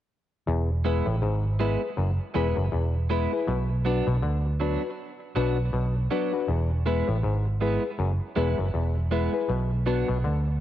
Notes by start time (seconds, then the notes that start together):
0.47 E1 E2
0.85 G#3 B3 E4 G#4 B4
1.06 A1 A2
1.22 G#1 G#2
1.60 G#3 B3 E4 G#4 B4
1.82 G#4 B4
1.97 F#1 F#2
2.34 E1 E2 G#3 B3 E4 G#4 B4
2.56 F#1 F#2
2.72 E1 E2
3.10 G#3 B3 E4 G#4 B4
3.32 E4 G#4 B4
3.47 B1 B2
3.85 F#3 B3 D4 F#4 B4
4.07 B1 B2
4.23 D2 D3
4.60 F#3 B3 D4 F#4 B4
4.83 F#4 B4
5.36 B1 B2 F#3 B3 D4 F#4 B4
5.73 B1 B2
6.11 F#3 B3 D4 F#4 B4
6.32 D4 F#4 B4
6.48 E1 E2
6.86 G#3 B3 E4 G#4 B4
7.08 A1 A2
7.23 G#1 G#2
7.61 G#3 B3 E4 G#4 B4
7.83 G#4 B4
7.99 F#1 F#2
8.36 E1 E2 G#3 B3 E4 G#4 B4
8.58 F#1 F#2
8.74 E1 E2
9.11 G#3 B3 E4 G#4 B4
9.33 E4 G#4 B4
9.49 B1 B2
9.86 F#3 B3 D4 F#4 B4
10.08 B1 B2
10.24 D2 D3